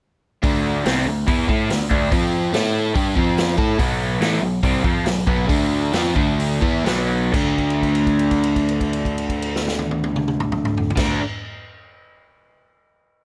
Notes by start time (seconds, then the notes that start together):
0.43 D2 D3 A3 D4, kick, open hi-hat
0.84 C2 C3 G3 C4, snare, open hi-hat
1.06 D2 D3 A3
1.26 E2 E3 B3 E4, kick, open hi-hat
1.48 A2 A3 E4 A4, kick
1.69 D2 D3 A3, snare, open hi-hat
1.90 D2 D3 A3 D4, kick
2.11 F2 F3 C4 F4, kick, open hi-hat
2.53 A2 A3 E4 A4, snare, open hi-hat
2.94 G2 G3 D4 G4, kick, open hi-hat
3.15 F2 F3 C4 F4, kick
3.38 snare, open hi-hat
3.57 A2 A3 E4 A4, kick
3.77 B1 B2 F#3 B3, kick, open hi-hat
4.21 A1 A2 E3 A3, snare, open hi-hat
4.41 B1 B2 F#3
4.63 C2 C3 G3 C4, kick, open hi-hat
4.84 F2 F3 C4 F4, kick
5.06 B1 B2 F#3, snare, open hi-hat
5.26 B1 B2 F#3 B3, kick
5.48 D2 D3 A3 D4, kick, open hi-hat
5.93 F2 F3 C4 F4, snare, open hi-hat
6.16 D2 D3 A3 D4, kick
6.40 open hi-hat
6.62 E2 E3 B3 E4, kick
6.84 B1 B2 F#3 B3, snare, open hi-hat
7.32 D2 D3 A3 D4, kick, crash
7.58 kick, crash
7.70 crash
7.83 kick, crash
7.95 crash
8.07 kick, crash
8.19 crash
8.31 kick, crash
8.44 crash
8.56 kick, crash
8.69 crash
8.81 kick, crash
8.93 crash
9.05 kick, crash
9.18 crash
9.30 kick, crash
9.42 crash
9.56 snare
9.68 snare
9.79 high tom
9.91 high tom
10.04 high tom
10.16 mid tom
10.28 mid tom
10.40 mid tom
10.52 mid tom
10.65 mid tom
10.77 floor tom
10.90 floor tom
10.96 D2 D3 A3 D4, kick, snare, crash